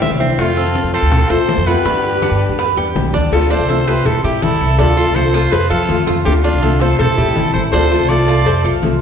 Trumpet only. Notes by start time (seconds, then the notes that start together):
0.02 E5
0.39 F4
0.94 A4
1.30 C5
1.67 B4
3.33 A4
3.51 C5
3.88 B4
4.06 A4
4.24 G4
4.42 A4
4.79 A4
5.15 C5
5.52 B4
5.70 A4
6.25 G4
6.43 F4
6.81 A4
7.00 A4
7.54 C5
7.72 C5
8.09 D5